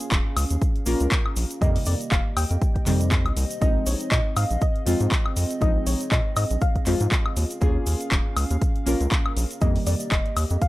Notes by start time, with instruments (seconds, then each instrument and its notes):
Already playing: synth stab A#3 C#4 F4 G#4, analog synth pad C#4 G#4 F5
0.00 closed hi-hat, shaker
0.11 analog synth bass D#1, kick, clap, closed hi-hat, shaker
0.37 analog synth bass C#2, open hi-hat, high woodblock, shaker
0.50 analog synth bass D#2, closed hi-hat, shaker
0.62 kick, closed hi-hat, shaker
0.76 closed hi-hat
0.86 analog synth bass A#1, synth stab A#3 C#4 F4 A#4, open hi-hat, shaker
1.00 analog synth bass C#2, closed hi-hat, shaker
1.11 kick, clap, closed hi-hat, shaker
1.26 high woodblock
1.36 analog synth bass A#1, open hi-hat, shaker
1.51 closed hi-hat, shaker
1.61 analog synth bass F2, synth stab C3 D#3 G3 A#3, analog synth pad A#3 G4 D#5, synth pluck D#5, kick, closed hi-hat, shaker
1.76 open hi-hat
1.85 analog synth bass F2, synth pluck D5, open hi-hat, shaker
2.01 closed hi-hat, shaker
2.12 analog synth bass F1, synth pluck F5, kick, clap, closed hi-hat, shaker
2.37 analog synth bass D#2, synth pluck G5, open hi-hat, high woodblock, shaker
2.51 analog synth bass F2, closed hi-hat, shaker
2.62 kick, closed hi-hat, shaker
2.76 kick, closed hi-hat
2.86 analog synth bass F2, synth stab C3 D#3 G3 C4, clap, open hi-hat, shaker
3.01 closed hi-hat, shaker
3.11 kick, clap, closed hi-hat, shaker
3.26 analog synth bass C2, closed hi-hat, high woodblock
3.37 analog synth bass C2, open hi-hat, shaker
3.51 closed hi-hat, shaker
3.61 analog synth bass A#1, synth stab F3 G#3 C4 D#4, analog synth pad C4 G#4, synth pluck D#5, kick, closed hi-hat, shaker
3.86 analog synth bass A#1, synth pluck C#5, open hi-hat, shaker
4.00 closed hi-hat, shaker
4.12 analog synth bass A#2, synth pluck D#5, kick, clap, closed hi-hat, shaker
4.37 analog synth bass G#2, synth pluck F5, open hi-hat, high woodblock, shaker
4.51 analog synth bass A#1, closed hi-hat, shaker
4.61 synth pluck D#5, kick, closed hi-hat, shaker
4.76 closed hi-hat
4.86 analog synth bass F2, synth stab F3 G#3 C4 F4, open hi-hat, shaker
5.00 analog synth bass G#2, closed hi-hat, shaker
5.12 kick, clap, closed hi-hat, shaker
5.26 high woodblock
5.37 analog synth bass F2, open hi-hat, shaker
5.50 closed hi-hat, shaker
5.61 analog synth bass A#1, synth stab F3 G#3 C4 D#4, synth pluck D#5, kick, closed hi-hat, shaker
5.87 analog synth bass A#1, synth pluck C#5, open hi-hat, shaker
6.01 closed hi-hat, shaker
6.12 analog synth bass A#2, synth pluck D#5, kick, clap, closed hi-hat, shaker
6.36 analog synth bass G#2, synth pluck D#5, open hi-hat, high woodblock, shaker
6.50 analog synth bass A#1, closed hi-hat, shaker
6.61 synth pluck F5, kick, closed hi-hat, shaker
6.76 kick, closed hi-hat
6.86 analog synth bass F2, synth stab F3 G#3 C4 F4, clap, open hi-hat, shaker
7.00 analog synth bass G#2, closed hi-hat, shaker
7.12 kick, clap, closed hi-hat, shaker
7.26 high woodblock
7.37 analog synth bass D#2, analog synth pad C#4 F5, open hi-hat, shaker
7.51 closed hi-hat, shaker
7.61 analog synth bass D#2, synth stab A#3 C#4 F4 G#4, kick, closed hi-hat, shaker
7.86 analog synth bass D#2, open hi-hat, shaker
8.01 closed hi-hat, shaker
8.12 analog synth bass D#1, kick, clap, closed hi-hat, shaker
8.37 analog synth bass C#2, open hi-hat, high woodblock, shaker
8.50 analog synth bass D#2, closed hi-hat, shaker
8.62 kick, closed hi-hat, shaker
8.76 closed hi-hat
8.86 analog synth bass A#1, synth stab A#3 C#4 F4 A#4, open hi-hat, shaker
9.01 analog synth bass C#2, closed hi-hat, shaker
9.11 kick, clap, closed hi-hat, shaker
9.26 high woodblock
9.37 analog synth bass A#1, open hi-hat, shaker
9.51 closed hi-hat, shaker
9.61 analog synth bass F2, synth stab C3 D#3 G3 A#3, analog synth pad A#3 G4 D#5, synth pluck D#5, kick, closed hi-hat, shaker
9.76 open hi-hat
9.87 analog synth bass F2, synth pluck D5, open hi-hat, shaker
10.00 closed hi-hat, shaker
10.12 analog synth bass F1, synth pluck D#5, kick, clap, closed hi-hat, shaker
10.26 closed hi-hat
10.37 analog synth bass D#2, open hi-hat, high woodblock, shaker
10.50 analog synth bass F2, closed hi-hat, shaker
10.62 synth pluck F5, kick, closed hi-hat, shaker